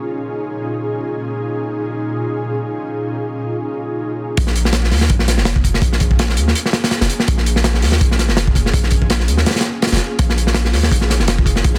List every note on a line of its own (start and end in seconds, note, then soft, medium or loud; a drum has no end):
0.00 4.33 A#2 medium
0.00 4.33 C#4 medium
0.00 4.33 D#4 medium
0.00 4.33 F4 medium
0.00 4.33 G#4 medium
4.37 4.93 A#1 medium
4.37 10.15 A#3 medium
4.37 11.79 C#4 medium
4.37 11.79 F4 medium
4.37 11.79 G#4 medium
4.37 kick loud
4.37 closed hi-hat medium
4.47 snare soft
4.56 closed hi-hat medium
4.65 snare medium
4.73 snare loud
4.73 closed hi-hat medium
4.84 snare soft
4.91 5.11 D#2 loud
4.91 snare soft
4.91 open hi-hat medium
5.01 snare soft
5.10 5.39 A#1 medium
5.10 kick loud
5.10 closed hi-hat medium
5.19 snare soft
5.28 snare soft
5.28 closed hi-hat medium
5.38 5.81 F1 loud
5.38 snare soft
5.45 snare loud
5.45 closed hi-hat medium
5.56 kick loud
5.64 kick medium
5.64 closed hi-hat medium
5.74 snare soft
5.82 6.38 A#1 medium
5.82 kick loud
5.82 closed hi-hat medium
5.93 snare soft
6.00 kick loud
6.00 closed hi-hat medium
6.11 kick medium
6.19 snare loud
6.19 closed hi-hat medium
6.29 snare soft
6.37 6.54 D#2 loud
6.37 closed hi-hat medium
6.48 snare soft
6.55 closed hi-hat medium
6.66 snare soft
6.73 snare loud
6.73 closed hi-hat medium
6.84 snare loud
6.84 closed hi-hat medium
6.91 snare loud
6.91 closed hi-hat medium
7.01 7.09 F1 medium
7.01 snare medium
7.01 closed hi-hat medium
7.09 closed hi-hat medium
7.20 snare medium
7.28 7.84 A#1 medium
7.28 kick loud
7.28 closed hi-hat medium
7.38 snare soft
7.46 closed hi-hat medium
7.56 snare medium
7.64 snare loud
7.64 closed hi-hat medium
7.74 snare medium
7.82 8.03 D#2 loud
7.82 snare soft
7.82 open hi-hat medium
7.92 snare medium
8.01 8.31 A#1 medium
8.01 kick loud
8.01 closed hi-hat medium
8.11 snare soft
8.19 snare soft
8.19 closed hi-hat medium
8.29 8.72 F1 loud
8.29 snare soft
8.37 snare loud
8.37 closed hi-hat medium
8.47 kick medium
8.55 kick loud
8.55 closed hi-hat medium
8.66 snare medium
8.74 9.30 A#1 loud
8.74 kick loud
8.74 closed hi-hat medium
8.83 snare soft
8.91 kick medium
8.91 closed hi-hat medium
9.02 kick medium
9.10 snare loud
9.10 closed hi-hat medium
9.20 snare soft
9.28 9.45 D#2 loud
9.28 closed hi-hat medium
9.37 snare soft
9.46 snare medium
9.46 closed hi-hat medium
9.51 snare medium
9.51 closed hi-hat medium
9.56 snare medium
9.56 closed hi-hat medium
9.61 snare medium
9.61 closed hi-hat medium
9.82 snare medium
9.82 closed hi-hat medium
9.87 snare medium
9.87 closed hi-hat medium
9.92 10.00 F1 medium
9.92 snare medium
9.92 closed hi-hat medium
9.96 snare medium
9.96 closed hi-hat medium
10.19 10.75 A#1 medium
10.19 11.79 D#4 medium
10.19 kick loud
10.19 closed hi-hat medium
10.30 snare medium
10.38 closed hi-hat medium
10.47 snare medium
10.54 snare loud
10.54 closed hi-hat medium
10.65 snare medium
10.73 10.93 D#2 loud
10.73 snare soft
10.73 open hi-hat medium
10.83 snare medium
10.91 11.21 A#1 medium
10.91 kick loud
10.91 closed hi-hat medium
11.01 snare soft
11.10 snare soft
11.10 closed hi-hat medium
11.20 11.63 F1 loud
11.20 snare soft
11.28 snare loud
11.28 closed hi-hat medium
11.38 kick loud
11.46 kick loud
11.46 closed hi-hat medium
11.56 snare medium
11.64 11.79 A#1 medium
11.64 kick loud
11.64 closed hi-hat medium
11.74 snare soft